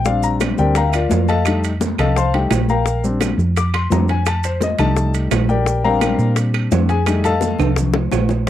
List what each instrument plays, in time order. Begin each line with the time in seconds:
Already playing: fingered electric bass A#1
0.05 grand piano G3 C4 D4 F5, high bongo, high conga, maracas
0.23 grand piano A#5, high conga, maracas
0.40 high bongo, high conga, high timbale, low timbale, claves, maracas
0.58 fingered electric bass D2, grand piano G3 C4 D4 G4 A#4 D5 G5, high bongo, high conga, maracas
0.75 grand piano A#4 F5 G5 A#5, high bongo, high conga, high timbale, maracas
0.90 grand piano E5, high bongo, high conga, high timbale, claves, maracas
0.94 grand piano F4 A#4 D5 F5
1.10 fingered electric bass F2, high bongo, low bongo, high conga, low timbale, maracas
1.28 grand piano A4 D#5 F5 A5, high bongo, high conga, high timbale, maracas
1.45 grand piano G3 A3 D#4, high bongo, high conga, high timbale, claves, maracas
1.63 high conga, high timbale, maracas
1.81 high bongo, high conga, low timbale, maracas
1.98 fingered electric bass C2, grand piano A4 D#5 F5 A5, high bongo, high conga, low conga, high timbale, claves, maracas
2.16 grand piano C5 F5 A5 C6, high bongo, high conga, maracas
2.34 grand piano G3 A3 D#4 G4 G5, high bongo, high conga, high timbale
2.51 fingered electric bass A#1, high bongo, low bongo, high conga, high timbale, low timbale, claves, maracas
2.69 grand piano A#4 F5 G5 A#5, high bongo, high conga, maracas
2.86 high bongo, high conga, maracas
3.04 grand piano G3 C4 D4, high conga, maracas
3.20 high bongo, high conga, high timbale, low timbale, claves, maracas
3.38 fingered electric bass F2, high bongo, high conga, maracas
3.56 grand piano D6, high bongo, high conga, high timbale, maracas
3.73 grand piano C6, high bongo, high conga, high timbale, claves
3.90 fingered electric bass F2, grand piano G3 C4 D4 A#5, high bongo, low bongo, high conga, low timbale, maracas
4.08 grand piano G#5, high bongo, high conga, high timbale, maracas
4.26 grand piano A5, high bongo, high conga, high timbale, claves, maracas
4.44 grand piano C5, high conga, high timbale, maracas
4.61 grand piano D#5, high bongo, high conga, low timbale, maracas
4.79 fingered electric bass C2, grand piano G3 A3 D#4 A5, high bongo, high conga, low conga, high timbale, claves, maracas
4.97 high bongo, high conga, maracas
5.14 high bongo, high conga, high timbale, maracas
5.31 fingered electric bass A#1, high bongo, low bongo, high conga, high timbale, low timbale, claves, maracas
5.49 grand piano G4 A#4 D5 G5, high bongo, high conga, maracas
5.66 high bongo, high conga, maracas
5.84 grand piano G3 C4 D4 A#4 F5 G5 A#5, high conga
6.01 high bongo, high conga, high timbale, low timbale, claves, maracas
6.19 fingered electric bass A#2, high bongo, high conga, maracas
6.36 high bongo, high conga, high timbale, maracas
6.54 high bongo, high conga, high timbale, claves
6.71 fingered electric bass F2, grand piano G3 C4 D4, high bongo, low bongo, high conga, low timbale, maracas
6.89 grand piano G#4 G#5, high bongo, high conga, high timbale, maracas
7.06 grand piano G3 A3 D#4, high bongo, high conga, high timbale, claves, maracas
7.24 grand piano A4 D#5 F5 A5, high conga, high timbale, maracas
7.41 high bongo, high conga, low timbale, maracas
7.59 fingered electric bass C2, high bongo, high conga, low conga, high timbale, claves, maracas
7.76 high bongo, high conga, low conga, maracas
7.94 high bongo, high conga, low timbale
8.12 fingered electric bass A#1, low bongo, high conga, low timbale, claves, maracas
8.29 low bongo, high conga, low timbale, maracas
8.47 grand piano F3